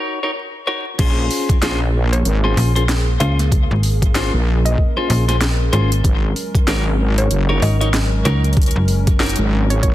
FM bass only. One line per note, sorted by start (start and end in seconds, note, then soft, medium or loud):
2.57 3.18 A#1 loud
3.21 3.68 C#2 loud
3.71 4.31 G#1 loud
5.10 5.71 A#1 loud
5.73 6.02 G#1 loud
7.62 8.23 G#1 loud
8.25 8.73 C#2 loud
8.76 9.36 F#1 loud